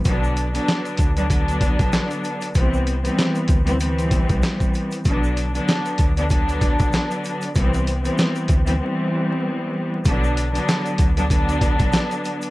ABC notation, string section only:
X:1
M:4/4
L:1/16
Q:"Swing 16ths" 1/4=96
K:Bphr
V:1 name="String section"
[D,F,B,D]3 [D,F,B,D]4 [D,F,B,D] [D,F,B,D]6- [D,F,B,D] z | [E,G,B,C]3 [E,G,B,C]4 [E,G,B,C] [E,G,B,C]6- [E,G,B,C] z | [D,F,B,D]3 [D,F,B,D]4 [D,F,B,D] [D,F,B,D]6- [D,F,B,D] z | [E,G,B,C]3 [E,G,B,C]4 [E,G,B,C] [E,G,B,C]6- [E,G,B,C] z |
[D,F,B,D]3 [D,F,B,D]4 [D,F,B,D] [D,F,B,D]6- [D,F,B,D] z |]